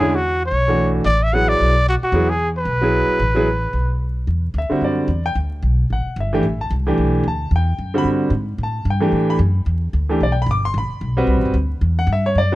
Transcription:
Already playing: upright bass E2, trumpet G#4
0.00 grand piano D3 G#3 C#4 E4
0.15 trumpet F#4
0.46 trumpet C#5
0.51 upright bass B1
0.68 grand piano E3 A3 D4 F#4
1.05 upright bass A1, trumpet D5
1.23 trumpet E5
1.33 grand piano F#3 B3 E4 G#4, trumpet F#5
1.48 trumpet D5
1.60 upright bass B1
1.89 trumpet F#4
2.02 trumpet F#4, muted upright bass stroke
2.12 upright bass E2, grand piano F#3 B3 E4 G#4
2.30 trumpet G#4
2.58 trumpet B4
2.65 upright bass B1
2.81 grand piano F#3 B3 E4 G#4
3.08 muted upright bass stroke
3.19 upright bass A1
3.35 grand piano F#3 B3 E4 G#4
3.73 upright bass B1
4.27 upright bass E2
4.54 upright bass D2
4.58 grand piano E5
4.70 grand piano D3 G3 C4 F#4, muted upright bass stroke
4.81 upright bass F#2, grand piano D5
5.08 upright bass E2
5.26 grand piano G5
5.35 upright bass D2
5.63 upright bass B1
5.90 upright bass A1, grand piano F#5
6.06 muted upright bass stroke
6.16 upright bass G1
6.20 grand piano E5
6.33 grand piano E3 A3 D4 G4
6.43 upright bass A1
6.61 grand piano A5
6.70 upright bass C2
6.87 grand piano E3 A3 D4 G4
6.98 upright bass B1
7.24 upright bass D2
7.28 grand piano A5
7.51 upright bass E2
7.56 grand piano G5
7.79 upright bass F#2
7.94 grand piano D3 G3 C4 F#4 B5
8.04 upright bass G2
8.30 upright bass G#2
8.58 upright bass A2
8.63 grand piano A5
8.85 upright bass G2
8.90 grand piano G5
9.00 grand piano E3 A3 D4 G4
9.12 upright bass A2
9.30 grand piano B5
9.39 upright bass F#2
9.66 upright bass E2
9.93 upright bass D2
10.09 grand piano E3 A3 D4 G4
10.20 upright bass B1, grand piano D5
10.32 grand piano G5
10.42 grand piano B5
10.46 upright bass G1
10.51 grand piano D6
10.65 grand piano C6
10.74 upright bass A1, grand piano B5
10.90 muted upright bass stroke
11.01 upright bass B1
11.17 grand piano G3 C4 F#4 B4
11.27 upright bass C2
11.36 upright bass A1
11.45 upright bass G1
11.54 upright bass D2
11.81 upright bass E2
11.99 grand piano F#5
12.07 upright bass G2
12.12 grand piano E5
12.26 grand piano C#5
12.35 upright bass F#2, grand piano D5
12.52 grand piano F#3

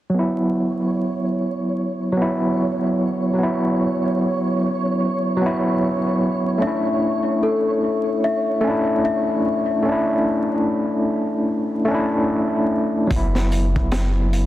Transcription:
0.10 tine electric piano F#3, synth texture C#5
0.14 tine electric piano B3
0.19 tine electric piano E4
2.12 tine electric piano F#3
2.17 tine electric piano B3
2.22 tine electric piano E4
3.34 tine electric piano F#3
3.39 tine electric piano B3
3.43 tine electric piano E4
5.37 tine electric piano F#3
5.41 tine electric piano B3
5.46 tine electric piano E4
6.58 tine electric piano A3 C#4
6.62 tine electric piano D4, celesta E5
6.67 tine electric piano E4
7.43 celesta A4
8.24 celesta E5
8.61 tine electric piano A3 C#4
8.67 tine electric piano D4 E4
9.05 celesta E5
9.82 tine electric piano A3 C#4
9.88 tine electric piano D4 E4
11.85 tine electric piano A3 C#4
11.91 tine electric piano D4 E4
13.07 sub bass F#1, tine electric piano F#3, kick, closed hi-hat
13.11 tine electric piano B3
13.16 tine electric piano E4
13.35 snare
13.52 closed hi-hat
13.76 kick
13.91 snare, closed hi-hat
14.33 closed hi-hat

